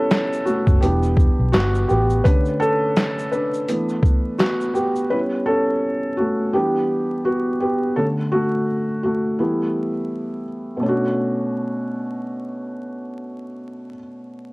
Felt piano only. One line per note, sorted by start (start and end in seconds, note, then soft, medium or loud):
0.00 0.78 G3 medium
0.00 0.79 B3 soft
0.00 0.84 C#4 medium
0.00 0.84 E4 medium
0.00 0.48 A4 loud
0.00 0.84 B4 medium
0.45 0.80 A3 medium
0.45 0.83 F#4 medium
0.81 2.21 E3 medium
0.81 2.21 G3 soft
0.81 1.50 B3 medium
0.81 2.22 D4 medium
0.81 1.55 G4 medium
1.52 1.87 B3 medium
1.52 1.90 F#4 medium
1.88 1.98 B3 medium
1.88 1.96 G4 medium
2.24 3.64 D3 medium
2.24 3.64 A3 soft
2.24 2.60 C#4 medium
2.24 2.59 D4 medium
2.24 2.61 B4 loud
2.60 3.29 C#4 medium
2.60 3.34 A4 loud
3.31 4.36 D4 medium
3.31 4.42 B4 medium
3.68 5.07 E3 medium
3.68 5.07 A3 medium
3.68 4.39 B3 medium
4.39 4.73 B3 medium
4.39 4.76 F#4 medium
4.74 4.84 B3 medium
4.74 4.82 G4 medium
5.10 6.14 G3 soft
5.10 6.14 B3 soft
5.10 5.46 C#4 medium
5.10 5.20 E4 medium
5.10 5.18 B4 medium
5.46 6.15 C#4 medium
5.46 6.14 A4 medium
6.17 6.52 A3 medium
6.17 6.54 F#4 medium
6.53 7.57 E3 soft
6.53 7.57 G3 soft
6.53 7.22 B3 medium
6.53 7.58 D4 medium
6.53 7.27 G4 medium
7.25 7.59 B3 medium
7.25 7.62 F#4 medium
7.60 7.95 B3 medium
7.60 7.94 G4 medium
7.96 9.00 D3 medium
7.96 8.32 A3 soft
7.96 8.06 C#4 medium
7.96 8.04 A4 medium
8.32 9.00 A3 medium
8.32 9.02 F#4 medium
9.03 9.38 A3 medium
9.03 9.40 F#4 medium
9.39 9.89 E3 medium
9.39 10.43 G3 medium
9.39 9.89 A3 soft
9.39 9.89 B3 medium
9.39 10.42 E4 medium
10.77 13.86 B2 medium
10.77 13.89 A3 medium
10.83 13.91 C#4 medium
10.83 13.94 D4 medium
10.89 13.97 F#4 medium